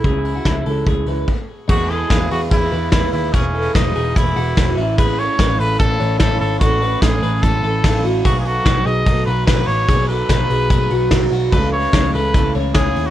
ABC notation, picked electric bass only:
X:1
M:4/4
L:1/8
Q:1/4=146
K:E
V:1 name="Picked electric bass" clef=bass
C,,2 C,, C,, C,, C,, z2 | E,,2 E,, E,, E,, E,, E,, D,, | E,,,2 E,,, E,,, E,,, E,,, E,,, A,,,- | A,,,2 A,,, A,,, A,,, A,,, A,,, G,,, |
A,,,2 A,,, A,,, A,,, A,,, A,,, A,,, | B,,,2 B,,, B,,, B,,, B,,, B,,, A,,, | B,,,2 B,,, B,,, B,,, B,,, B,,, B,,, | C,,2 C,, C,, C,, C,, C,, D,, |]